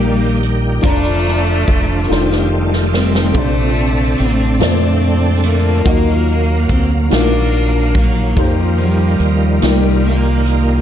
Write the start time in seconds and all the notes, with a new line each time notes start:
Already playing: A#1 A#2 D#3 G3 A#3 D#4 G4 A#4
0.00 closed hi-hat
0.43 closed hi-hat
0.81 F1 D3 F3 A3 D4 F4 A#5, kick, closed hi-hat
1.27 snare, closed hi-hat
1.68 F1, kick, closed hi-hat
2.08 F1 D#3 G3 A3 F4 G4 C5, snare
2.32 snare
2.73 snare
2.93 G3 C4, snare
3.15 snare
3.33 A#1 C3 D3 A3 C4 D4 F4 A4, kick, closed hi-hat
3.37 C5
3.76 closed hi-hat
4.18 A1 A3 C4, closed hi-hat
4.58 A#2 C4 D4 F4 A4 C5, snare, closed hi-hat
4.62 F2
4.68 D5
5.02 closed hi-hat
5.37 G#3
5.44 A3 A#3, closed hi-hat
5.83 D#2 F#3 A#3 D#4 F4 F#4 D#5, kick, closed hi-hat
5.88 F#3 F5
6.28 A#3, closed hi-hat
6.69 D2 C4, kick, closed hi-hat
7.08 A#1 D#3 A#3 F4 F#4 F5, closed hi-hat
7.12 A#3 D4, snare
7.54 closed hi-hat
7.95 A#3, kick, closed hi-hat
7.99 F#3
8.35 F2 D#3 G3 A3 A#3 D#4 F4 G4 C5, kick, closed hi-hat
8.40 F3 A#3
8.78 G3, closed hi-hat
9.20 D#2, closed hi-hat
9.25 F3
9.61 C2 G3 A#3 D#4 F4 G4 D5, snare, closed hi-hat
10.04 A#3, closed hi-hat
10.46 closed hi-hat